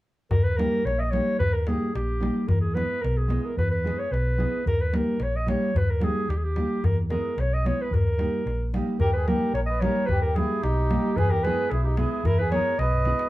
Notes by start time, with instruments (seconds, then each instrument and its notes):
0.31 fingered electric bass D#2, clarinet A#4, darbuka dum
0.44 clarinet B4
0.57 nylon-string guitar G3 A#3 D#4 G4, clarinet A#4, darbuka tek
0.85 fingered electric bass A#1, clarinet C#5, darbuka tek
0.98 clarinet D#5 E5, darbuka tek
1.11 nylon-string guitar G3 A#3 D#4 G4, clarinet C#5, darbuka tek
1.28 darbuka tek
1.39 fingered electric bass D#2, clarinet B4, darbuka dum
1.53 clarinet A#4
1.67 nylon-string guitar G3 A#3 D#4 G4, clarinet G#4, darbuka tek
1.95 fingered electric bass A#1, clarinet G4, darbuka tek
2.09 darbuka tek
2.20 nylon-string guitar G3 A#3 D#4 G4, darbuka tek
2.37 darbuka tek
2.48 fingered electric bass E2, clarinet A#4, darbuka dum
2.61 clarinet G#4
2.75 nylon-string guitar G#3 B3 E4 G#4, clarinet B4, darbuka tek
3.02 fingered electric bass B1, clarinet A#4, darbuka tek
3.17 clarinet G#4, darbuka tek
3.28 nylon-string guitar G#3 B3 E4 G#4, darbuka tek
3.44 clarinet A#4, darbuka tek
3.57 fingered electric bass E2, clarinet B4, darbuka dum
3.71 clarinet B4
3.84 nylon-string guitar G#3 B3 E4 G#4, darbuka tek
3.99 clarinet C#5, darbuka tek
4.11 fingered electric bass B1, clarinet B4, darbuka tek
4.27 darbuka tek
4.38 nylon-string guitar G#3 B3 E4 G#4, darbuka tek
4.66 fingered electric bass D#2, clarinet A#4, darbuka dum
4.81 clarinet B4
4.93 nylon-string guitar G3 A#3 D#4 G4, clarinet A#4, darbuka tek
5.20 fingered electric bass A#1, clarinet C#5, darbuka tek
5.34 clarinet D#5, darbuka tek
5.47 nylon-string guitar G3 A#3 D#4 G4, clarinet C#5, darbuka tek
5.62 darbuka tek
5.75 fingered electric bass D#2, clarinet B4, darbuka dum
5.90 clarinet A#4
6.00 nylon-string guitar G3 A#3 D#4 G4, clarinet G#4, darbuka tek
6.29 fingered electric bass D#2, clarinet G4, darbuka tek
6.37 clarinet G#4
6.43 clarinet G4, darbuka tek
6.56 nylon-string guitar G3 A#3 D#4 G4, darbuka tek
6.70 darbuka tek
6.84 fingered electric bass E2, clarinet A#4, darbuka dum
7.10 nylon-string guitar G#3 B3 E4 G#4, clarinet A#4, darbuka tek
7.37 fingered electric bass B1, clarinet C#5, darbuka tek
7.51 clarinet D#5, darbuka tek
7.65 nylon-string guitar G#3 B3 E4 G#4, clarinet C#5, darbuka tek
7.80 clarinet B4, darbuka tek
7.91 fingered electric bass D#2, clarinet A#4, darbuka dum
8.07 darbuka tek
8.18 nylon-string guitar G3 A#3 D#4 G4, darbuka tek
8.34 darbuka tek
8.46 fingered electric bass A#1, darbuka tek
8.74 nylon-string guitar G3 A#3 D#4 G4, darbuka tek
9.00 fingered electric bass D#2, accordion G4, clarinet A#4, darbuka dum
9.13 accordion G#4, clarinet B4
9.27 nylon-string guitar G3 A#3 D#4 G4, accordion G4, clarinet A#4, darbuka tek
9.53 fingered electric bass A#1, accordion A#4, clarinet C#5, darbuka tek
9.66 accordion B4, clarinet D#5, darbuka tek
9.80 nylon-string guitar G3 A#3 D#4 G4, accordion A#4, clarinet C#5, darbuka tek
9.96 darbuka tek
10.06 fingered electric bass D#2, clarinet B4, darbuka dum
10.11 accordion G4
10.22 accordion G4, clarinet A#4
10.35 nylon-string guitar G3 A#3 D#4 G4, accordion E4, clarinet G#4, darbuka tek
10.62 fingered electric bass B1, accordion D#4, clarinet G4, darbuka tek
10.77 darbuka tek
10.90 nylon-string guitar G3 A#3 D#4 G4, darbuka tek
11.05 darbuka tek
11.16 fingered electric bass E2, accordion G#4, clarinet B4, darbuka dum
11.30 accordion G4, clarinet A#4
11.44 nylon-string guitar G#3 B3 E4 G#4, accordion G#4, clarinet B4, darbuka tek
11.71 fingered electric bass B1, accordion E4, clarinet G#4, darbuka tek
11.84 accordion D#4, clarinet G4, darbuka tek
11.97 nylon-string guitar G#3 B3 E4 G#4, accordion E4, clarinet G#4, darbuka tek
12.12 darbuka tek
12.24 fingered electric bass E2, accordion E4, clarinet A#4, darbuka dum
12.39 accordion G#4, clarinet B4, darbuka tek
12.51 nylon-string guitar G#3 B3 E4 G#4, accordion A#4, clarinet C#5, darbuka tek
12.79 fingered electric bass B1, accordion B4, clarinet D#5, darbuka tek
12.91 darbuka dum
13.05 nylon-string guitar G#3 B3 E4 G#4, darbuka tek
13.19 darbuka tek